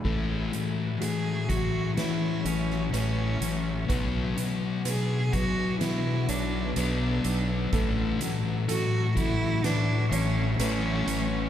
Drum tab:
CC |x---------------|----------------|----------------|
HH |--x-x-x-x-x-x-x-|x-x-x-x-x-x-x-x-|x-x-x-x-x-x-x-x-|
SD |--------o--o----|--------o-------|--------o-------|
BD |o-----o---------|o-----o---------|o-----o---------|